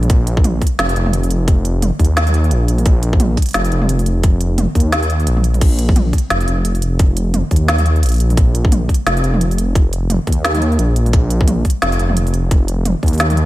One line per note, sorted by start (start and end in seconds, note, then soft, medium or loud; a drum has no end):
0.03 mid tom soft
0.03 open hi-hat medium
0.10 0.61 A#1 loud
0.10 kick loud
0.10 closed hi-hat medium
0.27 closed hi-hat medium
0.37 kick loud
0.44 closed hi-hat medium
0.44 mid tom medium
0.61 kick medium
0.61 open hi-hat medium
0.67 closed hi-hat medium
0.79 0.95 F1 medium
0.79 snare loud
0.79 closed hi-hat medium
0.89 open hi-hat medium
0.96 1.91 F1 medium
0.96 closed hi-hat soft
1.06 mid tom medium
1.13 closed hi-hat medium
1.23 open hi-hat medium
1.30 closed hi-hat medium
1.48 kick loud
1.48 closed hi-hat medium
1.65 closed hi-hat medium
1.82 closed hi-hat medium
1.82 mid tom medium
1.99 2.52 D#2 medium
1.99 kick medium
1.99 open hi-hat medium
2.05 closed hi-hat medium
2.17 snare loud
2.17 closed hi-hat medium
2.27 mid tom medium
2.27 open hi-hat medium
2.34 closed hi-hat soft
2.44 open hi-hat soft
2.51 2.85 A#1 loud
2.51 closed hi-hat medium
2.68 closed hi-hat medium
2.78 mid tom soft
2.78 open hi-hat medium
2.86 3.37 A#1 loud
2.86 kick loud
2.86 closed hi-hat medium
3.03 closed hi-hat medium
3.13 kick loud
3.20 closed hi-hat medium
3.20 mid tom medium
3.37 kick medium
3.37 open hi-hat medium
3.42 closed hi-hat medium
3.46 closed hi-hat soft
3.49 closed hi-hat soft
3.51 closed hi-hat soft
3.53 3.71 F1 medium
3.53 snare loud
3.53 closed hi-hat soft
3.53 closed hi-hat medium
3.56 closed hi-hat soft
3.65 open hi-hat medium
3.72 4.67 F1 medium
3.72 closed hi-hat soft
3.82 mid tom medium
3.89 closed hi-hat medium
3.99 open hi-hat medium
4.06 closed hi-hat medium
4.23 kick loud
4.23 closed hi-hat medium
4.41 closed hi-hat medium
4.58 closed hi-hat medium
4.58 mid tom medium
4.75 5.28 D#2 medium
4.75 kick medium
4.75 open hi-hat medium
4.80 closed hi-hat medium
4.92 snare loud
4.92 closed hi-hat medium
5.03 open hi-hat medium
5.10 closed hi-hat soft
5.20 open hi-hat soft
5.27 5.61 A#1 loud
5.27 closed hi-hat medium
5.37 mid tom medium
5.44 closed hi-hat medium
5.54 mid tom soft
5.54 open hi-hat medium
5.61 6.12 A#1 loud
5.61 kick loud
5.61 closed hi-hat medium
5.61 crash medium
5.79 closed hi-hat medium
5.89 kick loud
5.96 closed hi-hat medium
5.96 mid tom medium
6.13 kick medium
6.13 open hi-hat medium
6.18 closed hi-hat medium
6.30 6.47 F1 medium
6.30 snare loud
6.30 closed hi-hat medium
6.41 open hi-hat medium
6.48 7.43 F1 medium
6.48 closed hi-hat soft
6.65 closed hi-hat medium
6.75 open hi-hat medium
6.82 closed hi-hat medium
6.99 kick loud
6.99 closed hi-hat medium
7.17 closed hi-hat medium
7.34 closed hi-hat medium
7.34 mid tom medium
7.51 8.04 D#2 medium
7.51 kick medium
7.51 open hi-hat medium
7.56 closed hi-hat medium
7.68 snare loud
7.68 closed hi-hat medium
7.78 mid tom medium
7.78 open hi-hat medium
7.86 closed hi-hat soft
7.96 open hi-hat soft
8.03 8.36 A#1 loud
8.03 closed hi-hat medium
8.06 closed hi-hat medium
8.09 closed hi-hat medium
8.12 closed hi-hat soft
8.14 closed hi-hat soft
8.16 closed hi-hat soft
8.18 closed hi-hat soft
8.20 closed hi-hat medium
8.30 mid tom soft
8.30 open hi-hat medium
8.37 8.88 A#1 loud
8.37 kick loud
8.37 closed hi-hat medium
8.55 closed hi-hat medium
8.65 kick loud
8.72 closed hi-hat medium
8.72 mid tom medium
8.89 kick medium
8.89 open hi-hat medium
8.94 closed hi-hat medium
9.06 9.22 F1 medium
9.06 snare loud
9.06 closed hi-hat medium
9.17 open hi-hat medium
9.23 10.19 F1 medium
9.23 closed hi-hat soft
9.34 mid tom medium
9.41 closed hi-hat medium
9.51 open hi-hat medium
9.58 closed hi-hat medium
9.75 kick loud
9.75 closed hi-hat medium
9.93 closed hi-hat medium
10.10 closed hi-hat medium
10.10 mid tom medium
10.27 10.78 D#2 loud
10.27 kick medium
10.27 open hi-hat medium
10.32 closed hi-hat medium
10.45 snare loud
10.45 closed hi-hat medium
10.55 mid tom medium
10.55 open hi-hat medium
10.62 closed hi-hat soft
10.72 open hi-hat soft
10.79 11.12 A#1 loud
10.79 closed hi-hat medium
10.96 closed hi-hat medium
11.06 mid tom soft
11.06 open hi-hat medium
11.13 11.64 A#1 loud
11.13 kick loud
11.13 closed hi-hat medium
11.30 closed hi-hat medium
11.41 kick loud
11.48 closed hi-hat medium
11.48 mid tom medium
11.65 kick medium
11.65 open hi-hat medium
11.70 closed hi-hat medium
11.82 11.98 F1 medium
11.82 snare loud
11.82 closed hi-hat medium
11.92 open hi-hat medium
11.99 12.95 F1 medium
11.99 closed hi-hat soft
12.10 mid tom medium
12.17 closed hi-hat medium
12.27 open hi-hat medium
12.34 closed hi-hat medium
12.51 kick loud
12.51 closed hi-hat medium
12.68 closed hi-hat medium
12.85 closed hi-hat medium
12.85 mid tom medium
13.03 13.46 D#2 medium
13.03 kick medium
13.03 open hi-hat soft
13.06 closed hi-hat medium
13.06 open hi-hat soft
13.09 open hi-hat soft
13.13 open hi-hat soft
13.13 open hi-hat medium
13.18 snare loud
13.18 closed hi-hat medium
13.18 open hi-hat medium
13.30 mid tom medium
13.30 open hi-hat medium
13.37 closed hi-hat soft